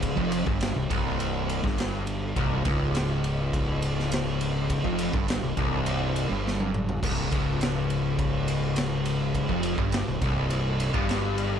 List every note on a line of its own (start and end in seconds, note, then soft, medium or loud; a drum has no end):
0.00 0.14 C#1 loud
0.00 0.16 C#2 loud
0.00 kick medium
0.00 ride loud
0.17 0.45 F1 medium
0.17 0.46 F2 loud
0.17 kick medium
0.32 ride medium
0.46 0.74 G1 medium
0.46 0.75 G2 loud
0.46 kick loud
0.61 snare loud
0.61 ride loud
0.76 0.90 C1 medium
0.76 0.89 C2 medium
0.90 1.60 C1 medium
0.90 1.62 C2 loud
0.90 kick loud
0.90 ride medium
1.20 ride loud
1.49 ride medium
1.63 2.33 G1 loud
1.63 2.35 G2 loud
1.63 kick loud
1.63 snare soft
1.78 snare loud
1.78 ride loud
2.07 ride medium
2.36 2.64 C1 medium
2.36 2.64 C2 loud
2.36 kick loud
2.36 ride medium
2.65 4.80 C#1 loud
2.65 4.82 C#2 loud
2.65 kick loud
2.65 ride medium
2.95 snare loud
2.95 ride loud
3.24 ride medium
3.53 kick loud
3.53 ride loud
3.82 ride medium
3.99 snare soft
4.12 snare loud
4.12 ride loud
4.41 ride medium
4.70 kick loud
4.70 ride loud
4.84 5.11 F1 loud
4.84 5.12 F2 loud
4.84 kick medium
4.99 ride medium
5.13 5.40 G1 loud
5.13 5.42 G2 loud
5.13 kick loud
5.28 snare loud
5.28 ride loud
5.43 5.56 C1 medium
5.43 5.56 C2 medium
5.57 6.26 C1 medium
5.57 6.29 C2 loud
5.57 kick loud
5.57 ride medium
5.86 ride loud
6.16 ride medium
6.29 6.99 G1 loud
6.29 7.01 G2 loud
6.47 snare medium
6.60 high tom medium
6.74 mid tom medium
6.89 floor tom loud
7.02 7.29 C1 loud
7.02 7.30 C2 loud
7.02 kick loud
7.02 crash loud
7.31 9.45 C#1 loud
7.31 9.48 C#2 loud
7.31 kick loud
7.31 ride medium
7.61 snare loud
7.61 ride medium
7.90 ride medium
8.19 kick loud
8.19 ride loud
8.48 ride medium
8.76 snare loud
8.76 ride loud
9.05 ride medium
9.35 kick loud
9.35 ride loud
9.49 9.76 F1 loud
9.49 9.77 F2 loud
9.49 kick medium
9.63 ride medium
9.78 10.05 G1 loud
9.78 10.06 G2 medium
9.78 kick loud
9.92 snare loud
9.92 ride loud
10.07 10.20 C1 medium
10.07 10.21 C2 medium
10.22 10.90 C1 loud
10.22 10.94 C2 loud
10.22 kick loud
10.22 ride medium
10.50 ride loud
10.80 ride medium
10.94 11.60 G1 medium
10.94 11.60 G2 loud
10.94 kick loud
11.09 snare loud
11.09 ride loud
11.38 ride medium